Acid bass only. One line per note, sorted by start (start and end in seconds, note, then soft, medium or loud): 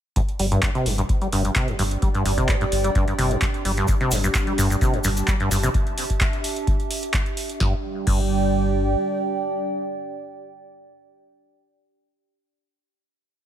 0.16 0.20 G2 loud
0.39 0.46 G3 medium
0.52 0.61 G2 loud
0.75 0.87 C3 medium
0.86 0.93 G2 medium
0.98 1.02 G2 loud
1.21 1.27 G3 medium
1.32 1.43 G2 loud
1.45 1.51 G2 medium
1.56 1.69 C3 loud
1.68 1.74 G2 medium
1.79 1.83 G2 loud
2.02 2.09 G3 medium
2.14 2.24 G2 loud
2.25 2.32 G2 medium
2.38 2.50 C3 medium
2.49 2.55 G2 medium
2.61 2.65 G2 medium
2.84 2.90 G3 medium
2.95 3.05 G2 loud
3.18 3.32 C3 medium
3.31 3.37 G2 medium
3.42 3.46 G2 loud
3.65 3.72 G3 medium
3.77 3.86 G2 loud
3.88 3.95 G2 medium
4.01 4.13 C3 loud
4.12 4.18 G2 medium
4.24 4.27 G2 loud
4.47 4.53 G3 medium
4.58 4.68 G2 loud
4.70 4.76 G2 medium
4.81 4.95 C3 loud
4.94 5.00 G2 medium
5.05 5.09 G2 loud
5.28 5.35 G3 medium
5.40 5.49 G2 loud
5.51 5.58 G2 medium
5.63 5.69 C3 loud
7.60 7.74 G2 medium
8.07 8.20 G2 medium